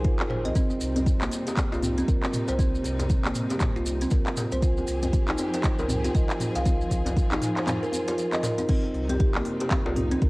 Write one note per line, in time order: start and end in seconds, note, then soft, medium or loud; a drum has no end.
0.00 0.51 F3 medium
0.00 4.58 C4 medium
0.00 0.51 G4 medium
0.00 0.51 G#4 medium
0.04 0.47 G1 medium
0.04 0.18 F4 medium
0.04 kick loud
0.04 closed hi-hat soft
0.20 clap medium
0.20 djembe tone medium
0.30 0.44 C5 medium
0.30 mid tom medium
0.30 djembe slap medium
0.45 0.52 C2 loud
0.45 0.55 D#5 medium
0.45 closed hi-hat medium
0.45 djembe tone medium
0.55 4.58 C3 medium
0.55 4.58 G3 medium
0.55 0.69 C4 loud
0.55 4.58 D#4 medium
0.55 kick loud
0.55 closed hi-hat soft
0.55 maracas medium
0.70 djembe tone medium
0.70 maracas soft
0.81 1.13 C2 loud
0.81 open hi-hat medium
0.81 maracas medium
0.96 closed hi-hat medium
0.96 djembe tone medium
0.96 djembe bass medium
0.96 maracas soft
1.06 kick loud
1.06 closed hi-hat soft
1.06 maracas medium
1.21 1.28 A#1 loud
1.21 1.31 A#3 loud
1.21 clap medium
1.21 maracas soft
1.32 open hi-hat medium
1.32 djembe tone medium
1.32 maracas medium
1.47 1.56 G4 medium
1.47 closed hi-hat medium
1.47 djembe slap medium
1.47 maracas soft
1.57 kick loud
1.57 clap medium
1.57 closed hi-hat soft
1.57 djembe tone loud
1.57 maracas soft
1.72 2.02 C2 medium
1.72 1.82 F4 loud
1.72 djembe slap loud
1.72 maracas soft
1.83 mid tom medium
1.83 open hi-hat medium
1.83 djembe bass medium
1.83 maracas medium
1.98 2.07 C4 loud
1.98 closed hi-hat medium
1.98 djembe tone medium
1.98 maracas soft
2.08 2.18 C2 loud
2.08 2.23 A#4 medium
2.08 kick loud
2.08 closed hi-hat soft
2.08 maracas medium
2.23 clap medium
2.23 djembe tone medium
2.23 maracas soft
2.33 mid tom medium
2.33 open hi-hat medium
2.33 maracas medium
2.48 2.79 C2 loud
2.48 2.58 C5 loud
2.48 closed hi-hat medium
2.48 djembe slap medium
2.48 maracas soft
2.59 2.73 C4 medium
2.59 kick loud
2.59 closed hi-hat soft
2.59 djembe tone medium
2.59 maracas soft
2.75 maracas soft
2.84 3.17 C2 loud
2.84 open hi-hat medium
2.84 djembe tone medium
2.84 maracas medium
2.99 closed hi-hat medium
2.99 djembe slap medium
2.99 djembe bass medium
2.99 maracas soft
3.10 kick loud
3.10 closed hi-hat soft
3.10 maracas medium
3.25 3.32 A#1 loud
3.25 3.34 A#3 loud
3.25 clap medium
3.25 djembe tone medium
3.25 maracas soft
3.35 mid tom loud
3.35 open hi-hat medium
3.35 maracas medium
3.50 3.60 G4 medium
3.50 closed hi-hat medium
3.50 djembe slap medium
3.50 djembe tone medium
3.50 maracas soft
3.60 kick loud
3.60 clap medium
3.60 closed hi-hat soft
3.60 mid tom loud
3.60 djembe bass medium
3.60 maracas medium
3.76 4.06 C2 medium
3.76 3.85 F4 loud
3.76 maracas soft
3.86 open hi-hat medium
3.86 djembe tone medium
3.86 maracas medium
4.01 4.11 C4 loud
4.01 closed hi-hat medium
4.01 maracas soft
4.11 4.21 C2 loud
4.11 4.26 A#4 medium
4.11 kick loud
4.11 closed hi-hat soft
4.11 djembe tone medium
4.11 maracas medium
4.26 clap medium
4.26 maracas soft
4.37 mid tom loud
4.37 open hi-hat medium
4.37 djembe slap medium
4.37 maracas medium
4.52 4.82 C2 loud
4.52 4.61 C5 loud
4.52 closed hi-hat medium
4.52 djembe tone medium
4.52 maracas soft
4.62 8.65 F3 medium
4.62 8.65 C4 medium
4.62 4.76 F4 loud
4.62 6.64 G4 medium
4.62 8.65 G#4 medium
4.62 kick loud
4.62 closed hi-hat soft
4.62 maracas soft
4.77 djembe tone medium
4.77 maracas soft
4.87 5.20 C2 loud
4.87 open hi-hat medium
4.87 maracas medium
5.03 closed hi-hat medium
5.03 djembe bass loud
5.03 maracas soft
5.13 kick loud
5.13 closed hi-hat soft
5.13 djembe tone soft
5.13 maracas soft
5.28 5.35 A#1 loud
5.28 5.38 D#4 loud
5.28 clap medium
5.28 maracas soft
5.38 open hi-hat medium
5.38 djembe tone medium
5.38 maracas medium
5.54 5.63 C5 medium
5.54 closed hi-hat medium
5.54 djembe slap medium
5.54 maracas soft
5.64 kick loud
5.64 clap medium
5.64 closed hi-hat soft
5.64 maracas soft
5.79 6.09 C2 medium
5.79 5.88 A#4 loud
5.79 djembe slap medium
5.79 djembe tone medium
5.79 maracas soft
5.88 mid tom medium
5.88 open hi-hat medium
5.88 djembe bass loud
5.88 maracas medium
6.04 6.14 F4 loud
6.04 closed hi-hat medium
6.04 djembe tone medium
6.04 maracas soft
6.15 6.25 C2 loud
6.15 6.29 D#5 medium
6.15 kick loud
6.15 closed hi-hat soft
6.15 maracas soft
6.30 clap medium
6.30 maracas soft
6.40 mid tom loud
6.40 open hi-hat medium
6.40 djembe tone medium
6.40 maracas medium
6.55 6.85 C2 loud
6.55 6.65 F5 loud
6.55 closed hi-hat medium
6.55 djembe slap medium
6.55 maracas soft
6.65 8.67 F4 medium
6.65 6.79 F4 loud
6.65 kick loud
6.65 closed hi-hat soft
6.65 djembe tone loud
6.65 maracas medium
6.81 maracas soft
6.91 7.23 C2 loud
6.91 kick medium
6.91 open hi-hat medium
6.91 maracas medium
7.06 closed hi-hat medium
7.06 djembe slap medium
7.06 djembe tone medium
7.06 djembe bass loud
7.06 maracas soft
7.17 kick loud
7.17 closed hi-hat soft
7.17 maracas medium
7.31 7.38 A#1 loud
7.31 7.41 D#4 loud
7.31 clap medium
7.31 djembe tone medium
7.31 maracas soft
7.42 mid tom loud
7.42 open hi-hat medium
7.42 maracas medium
7.56 7.67 C5 medium
7.56 clap medium
7.56 closed hi-hat medium
7.56 djembe slap medium
7.56 maracas soft
7.67 clap medium
7.67 closed hi-hat soft
7.67 mid tom loud
7.67 djembe tone medium
7.67 djembe bass loud
7.67 maracas medium
7.83 7.92 A#4 loud
7.83 maracas soft
7.92 open hi-hat medium
7.92 djembe tone medium
7.92 maracas medium
8.08 8.14 F4 loud
8.08 closed hi-hat medium
8.08 djembe slap medium
8.08 maracas soft
8.18 8.27 A#4 medium
8.18 closed hi-hat soft
8.18 maracas medium
8.32 8.43 D#5 loud
8.32 clap medium
8.32 djembe tone medium
8.32 maracas soft
8.43 8.57 A#4 loud
8.43 mid tom loud
8.43 open hi-hat loud
8.43 djembe slap medium
8.43 maracas medium
8.58 8.68 D#4 medium
8.58 closed hi-hat medium
8.58 djembe tone medium
8.58 maracas soft
8.69 10.30 C3 medium
8.69 10.30 G3 medium
8.69 10.30 C4 medium
8.69 8.83 C4 loud
8.69 10.30 D#4 medium
8.69 kick loud
8.69 closed hi-hat soft
8.69 crash loud
8.83 djembe tone medium
8.94 9.27 C2 loud
8.94 open hi-hat medium
9.09 9.16 G4 medium
9.09 closed hi-hat medium
9.09 djembe tone medium
9.09 djembe bass medium
9.20 9.30 G4 medium
9.20 kick loud
9.20 closed hi-hat soft
9.35 9.42 A#1 loud
9.35 9.44 A#3 loud
9.35 clap medium
9.45 open hi-hat medium
9.45 djembe tone medium
9.60 9.70 G4 medium
9.60 closed hi-hat medium
9.60 djembe slap medium
9.71 kick loud
9.71 clap loud
9.71 closed hi-hat soft
9.71 djembe tone loud
9.86 10.16 C2 medium
9.86 9.95 F4 loud
9.86 djembe slap loud
9.96 10.10 D#4 medium
9.96 mid tom medium
9.96 open hi-hat loud
9.96 djembe bass medium
10.11 10.21 C4 medium
10.11 closed hi-hat medium
10.11 djembe tone medium
10.22 10.30 C2 loud
10.22 10.30 A#4 medium
10.22 kick loud
10.22 closed hi-hat soft